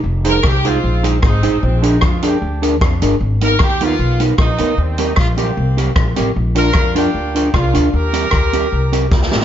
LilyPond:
<<
  \new Staff \with { instrumentName = "Clean electric guitar" } { \time 4/4 \key ees \major \tempo 4 = 152 r8 <ees' aes' c''>8 r8 <ees' aes' c''>8 r8 <ees' aes' c''>8 r8 <ees' aes' c''>8 | r8 <d' aes' bes'>8 r8 <d' aes' bes'>8 r8 <d' aes' bes'>8 r8 <d' aes' bes'>8 | r8 <ces' ees' bes'>8 r8 <ces' ees' bes'>8 r8 <ces' ees' bes'>8 r8 <ces' ees' bes'>8 | r8 <c' g' bes'>8 r8 <c' g' bes'>8 r8 <c' g' bes'>8 r8 <c' g' bes'>8 |
r8 <d' f' bes'>8 r8 <d' f' bes'>8 r8 <d' f' bes'>8 r8 <d' f' bes'>8 | r8 <c' g' bes'>8 r8 <c' g' bes'>8 r8 <c' g' bes'>8 r8 <c' g' bes'>8 | }
  \new Staff \with { instrumentName = "Horn section" } { \time 4/4 \key ees \major << { r8 bes'8 g'8 f'4 r8 ees'4 | c'8 ees'8 f'8 g'4 r4. | r8 bes'8 g'8 f'4 r8 ees'4 | c'8 ees'8 f'8 g'4 r4. |
r8 bes'4 g'4. f'4 | bes'2.~ bes'8 r8 | } \\ { r4. <aes c'>4. <aes c'>4 | <f aes>4. d'2 r8 | r4. <bes ces'>4. <bes ces'>4 | g4. <bes c'>2 r8 |
r8 <d' f'>4 <bes d'>4. <bes d'>4 | g'2.~ g'8 r8 | } >> }
  \new Staff \with { instrumentName = "Upright bass" } { \clef bass \time 4/4 \key ees \major f,,4 c,4 bes,,4 aes,,8 a,,8 | bes,,4 f,4 d,4 f,8 g,,8 | aes,,4 ees,4 ces,4 bes,,8 d,8 | ees,4 bes,,4 c,4 bes,,8 a,,8 |
bes,,4 f,4 d,4 c,8 d,8 | ees,4 d,4 c,4 d,8 a,,8 | }
  \new DrumStaff \with { instrumentName = "Drums" } \drummode { \time 4/4 r8 hh8 <bd ss>8 hh8 r8 hh8 <bd ss>8 hh8 | r8 hh8 <bd ss>8 hh8 r8 hh8 <bd ss>8 hh8 | r8 hh8 <bd ss>8 hh8 r8 hh8 <bd ss>8 hh8 | r8 hh8 <bd ss>8 hh8 r8 hh8 <bd ss>8 hh8 |
r8 hh8 <bd ss>8 hh8 r8 hh8 <bd ss>8 <hh ss>8 | r8 hh8 <bd ss>8 hh8 r8 hh8 <bd sn>16 sn16 sn16 sn16 | }
>>